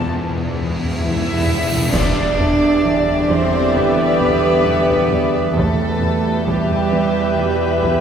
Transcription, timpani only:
0.06 0.12 E2 medium
0.13 0.20 E2 medium
0.21 0.28 E2 medium
0.29 0.36 E2 medium
0.37 0.44 E2 medium
0.46 0.53 E2 medium
0.54 0.60 E2 medium
0.61 0.68 E2 medium
0.69 0.76 E2 medium
0.77 0.83 E2 medium
0.84 0.91 E2 medium
0.92 0.99 E2 medium
1.00 1.06 E2 medium
1.08 1.15 E2 medium
1.16 1.22 E2 medium
1.24 1.31 E2 medium
1.32 1.38 E2 medium
1.39 1.45 E2 medium
1.46 1.53 E2 medium
1.54 1.61 E2 medium
1.62 1.68 E2 medium
1.69 1.75 E2 medium
1.77 1.84 E2 medium

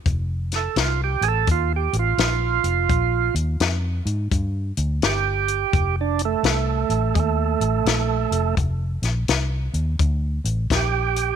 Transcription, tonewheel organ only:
0.56 0.77 A4 medium
0.80 1.01 F4 medium
1.04 1.25 G4 medium
1.23 1.29 G#4 medium
1.28 1.49 A4 medium
1.51 1.73 F4 medium
1.76 1.97 G4 medium
1.99 3.35 F4 medium
5.06 5.96 G4 medium
6.01 6.22 D4 medium
6.25 7.15 A3 medium
7.15 7.19 G#3 medium
7.19 8.55 A3 medium
10.75 11.36 G4 medium

